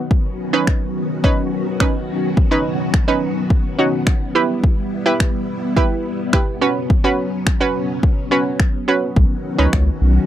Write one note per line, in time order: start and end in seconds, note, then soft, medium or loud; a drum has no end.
0.00 0.11 B3 medium
0.00 0.11 D#4 medium
0.00 0.11 F#4 loud
0.11 4.31 D#3 medium
0.11 4.31 F#3 medium
0.11 10.26 B3 medium
0.11 4.31 C#4 medium
0.11 4.31 F#4 medium
0.11 kick loud
0.53 1.09 C#4 medium
0.53 1.09 D#4 medium
0.53 1.09 B4 loud
0.67 finger snap loud
0.67 kick loud
1.24 1.68 C#4 loud
1.24 1.68 D#4 medium
1.24 1.69 B4 loud
1.24 kick loud
1.80 2.36 C#4 medium
1.80 2.36 D#4 medium
1.80 2.36 B4 medium
1.80 finger snap loud
1.80 kick loud
2.37 kick loud
2.51 2.96 C#4 medium
2.51 2.96 D#4 medium
2.51 2.96 B4 loud
2.94 finger snap loud
2.94 kick loud
3.08 3.63 C#4 medium
3.08 3.64 D#4 medium
3.08 3.64 B4 loud
3.50 kick loud
3.79 4.23 C#4 medium
3.79 4.23 D#4 medium
3.79 4.23 F#4 medium
4.07 finger snap loud
4.07 kick loud
4.35 6.60 G3 medium
4.35 4.92 E4 medium
4.35 6.60 E4 medium
4.35 4.92 G4 medium
4.35 4.92 B4 loud
4.64 kick loud
5.06 5.61 E4 loud
5.06 5.62 G4 medium
5.06 5.62 B4 loud
5.20 finger snap loud
5.20 kick loud
5.77 6.21 E4 loud
5.77 6.21 G4 medium
5.77 6.21 B4 loud
5.77 kick loud
6.33 6.62 E4 medium
6.33 6.62 G4 medium
6.33 6.61 B4 medium
6.33 finger snap loud
6.33 kick loud
6.61 9.14 F#3 medium
6.61 6.96 C#4 medium
6.61 9.14 C#4 medium
6.61 6.96 F#4 medium
6.61 6.96 B4 loud
6.90 kick loud
7.04 7.49 C#4 loud
7.04 7.49 F#4 medium
7.04 7.49 B4 loud
7.47 finger snap loud
7.47 kick loud
7.60 8.16 C#4 medium
7.60 8.16 F#4 medium
7.60 8.16 B4 loud
8.03 kick loud
8.31 8.76 C#4 medium
8.31 8.76 F#4 medium
8.31 8.76 B4 loud
8.60 finger snap loud
8.60 kick loud
8.88 9.16 C#4 medium
8.88 9.16 F#4 medium
8.88 9.17 B4 medium
9.16 9.25 B1 loud
9.16 10.26 D#3 medium
9.16 10.26 F#3 medium
9.16 10.26 C#4 medium
9.16 10.26 F#4 medium
9.16 kick loud
9.59 9.68 C#2 medium
9.59 10.14 C#4 loud
9.59 10.14 D#4 medium
9.59 10.14 B4 loud
9.73 9.91 C#2 medium
9.73 finger snap loud
9.73 kick loud
10.01 10.19 B1 medium